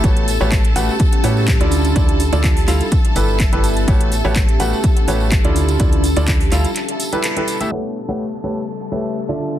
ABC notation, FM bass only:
X:1
M:4/4
L:1/16
Q:"Swing 16ths" 1/4=125
K:Amix
V:1 name="FM bass" clef=bass
A,,,3 A,,,3 A,,, z3 A,,3 D,,3 | D,,3 D,,3 D,, z3 G,,,3 G,,,3 | A,,,3 A,,,3 A,,, z3 A,,,3 D,,3 | D,,3 D,,3 D,, z8 z |
z16 |]